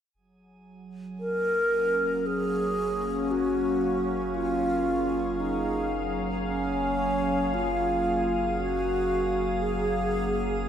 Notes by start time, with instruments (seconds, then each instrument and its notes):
0.13 sub bass F#1, ambient pad F#3, synth texture G#4 G#5
1.05 ambient pad C#4
1.12 ambient pad A#3
1.20 alto flute A#4
2.26 alto flute G#4
2.80 ambient pad F5
3.31 alto flute F#4
3.70 ambient pad G#4
4.34 alto flute F4
5.40 alto flute D#4
6.47 alto flute C#4
7.54 alto flute F4
8.60 alto flute F#4
9.62 alto flute G#4